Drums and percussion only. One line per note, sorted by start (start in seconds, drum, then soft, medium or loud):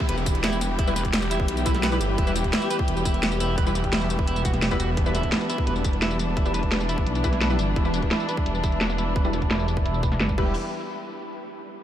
0.00 kick loud
0.09 closed hi-hat loud
0.18 tambourine soft
0.26 kick loud
0.26 closed hi-hat medium
0.26 tambourine medium
0.35 closed hi-hat soft
0.44 snare loud
0.44 closed hi-hat loud
0.53 snare soft
0.53 tambourine soft
0.61 snare soft
0.61 closed hi-hat medium
0.61 tambourine medium
0.79 kick loud
0.79 closed hi-hat medium
0.87 tambourine soft
0.96 snare soft
0.96 closed hi-hat medium
0.96 tambourine medium
1.05 kick medium
1.05 closed hi-hat soft
1.13 snare loud
1.13 closed hi-hat medium
1.22 tambourine soft
1.31 closed hi-hat medium
1.31 tambourine medium
1.40 kick loud
1.48 closed hi-hat loud
1.57 closed hi-hat soft
1.57 tambourine soft
1.66 kick loud
1.66 closed hi-hat medium
1.66 tambourine medium
1.75 snare medium
1.75 closed hi-hat soft
1.83 snare loud
1.83 closed hi-hat medium
1.92 tambourine soft
2.01 closed hi-hat medium
2.01 tambourine medium
2.18 kick loud
2.18 closed hi-hat medium
2.27 tambourine soft
2.36 snare soft
2.36 closed hi-hat medium
2.36 tambourine medium
2.44 kick medium
2.44 closed hi-hat soft
2.53 snare loud
2.53 closed hi-hat medium
2.62 tambourine soft
2.71 closed hi-hat medium
2.71 tambourine medium
2.79 kick loud
2.88 closed hi-hat medium
2.97 tambourine soft
3.05 kick loud
3.05 closed hi-hat medium
3.05 tambourine medium
3.14 closed hi-hat soft
3.23 snare loud
3.23 closed hi-hat loud
3.32 snare soft
3.32 tambourine soft
3.40 snare soft
3.40 closed hi-hat medium
3.40 tambourine medium
3.58 kick loud
3.58 closed hi-hat medium
3.66 tambourine soft
3.75 snare soft
3.75 closed hi-hat medium
3.75 tambourine medium
3.84 kick medium
3.84 closed hi-hat soft
3.93 snare loud
3.93 closed hi-hat medium
4.01 tambourine soft
4.10 closed hi-hat medium
4.10 tambourine medium
4.19 kick loud
4.27 closed hi-hat medium
4.36 closed hi-hat soft
4.36 tambourine soft
4.45 kick loud
4.45 closed hi-hat medium
4.45 tambourine medium
4.54 snare medium
4.54 closed hi-hat soft
4.62 snare loud
4.62 closed hi-hat medium
4.71 kick medium
4.71 tambourine soft
4.80 closed hi-hat medium
4.80 tambourine medium
4.97 kick loud
4.97 closed hi-hat medium
5.06 tambourine soft
5.15 snare soft
5.15 closed hi-hat medium
5.15 tambourine medium
5.23 kick medium
5.23 closed hi-hat soft
5.32 snare loud
5.32 closed hi-hat medium
5.41 tambourine soft
5.50 closed hi-hat medium
5.50 tambourine medium
5.58 kick loud
5.67 closed hi-hat medium
5.76 tambourine soft
5.84 kick loud
5.84 closed hi-hat medium
5.84 tambourine medium
5.93 closed hi-hat soft
6.02 snare loud
6.02 closed hi-hat medium
6.11 snare soft
6.11 tambourine soft
6.19 snare soft
6.19 closed hi-hat medium
6.19 tambourine medium
6.37 kick loud
6.37 closed hi-hat medium
6.46 tambourine soft
6.54 snare soft
6.54 closed hi-hat medium
6.54 tambourine medium
6.63 kick medium
6.63 closed hi-hat soft
6.72 snare loud
6.72 closed hi-hat medium
6.80 tambourine soft
6.89 closed hi-hat medium
6.89 tambourine medium
6.98 kick loud
7.07 closed hi-hat medium
7.15 closed hi-hat soft
7.15 tambourine soft
7.24 kick loud
7.24 closed hi-hat medium
7.24 tambourine medium
7.33 snare medium
7.33 closed hi-hat soft
7.41 snare loud
7.41 closed hi-hat medium
7.50 tambourine soft
7.59 closed hi-hat medium
7.59 tambourine medium
7.76 kick loud
7.76 closed hi-hat medium
7.85 tambourine soft
7.94 snare soft
7.94 closed hi-hat medium
7.94 tambourine medium
8.03 kick medium
8.03 closed hi-hat soft
8.11 snare loud
8.11 closed hi-hat loud
8.20 tambourine soft
8.29 closed hi-hat medium
8.29 tambourine medium
8.37 kick loud
8.46 closed hi-hat loud
8.55 tambourine soft
8.64 kick loud
8.64 closed hi-hat medium
8.64 tambourine medium
8.72 closed hi-hat soft
8.81 snare loud
8.81 closed hi-hat loud
8.90 snare soft
8.90 tambourine soft
8.98 snare soft
8.98 closed hi-hat medium
8.98 tambourine medium
9.16 kick loud
9.16 closed hi-hat medium
9.25 tambourine soft
9.33 snare soft
9.33 closed hi-hat medium
9.33 tambourine medium
9.42 kick medium
9.42 closed hi-hat soft
9.51 snare loud
9.51 closed hi-hat loud
9.59 tambourine soft
9.68 closed hi-hat medium
9.68 tambourine medium
9.77 kick loud
9.86 closed hi-hat loud
9.94 tambourine soft
10.03 kick loud
10.03 closed hi-hat medium
10.03 tambourine medium
10.12 snare medium
10.12 closed hi-hat soft
10.20 snare loud
10.20 closed hi-hat loud
10.29 kick medium
10.29 tambourine soft
10.38 kick loud
10.38 crash medium